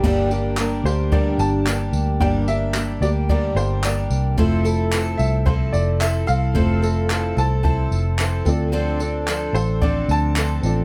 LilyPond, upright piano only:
\new Staff \with { instrumentName = "Upright piano" } { \time 4/4 \key g \dorian \tempo 4 = 110 r4. c''8 d''8 a''4. | g''8 e''4 d''8 d''8 c''8 d''8. r16 | r4. e''8 c''8 d''8 e''8 f''8~ | f''4. a''8 a''4. r8 |
r4. c''8 d''8 a''4. | }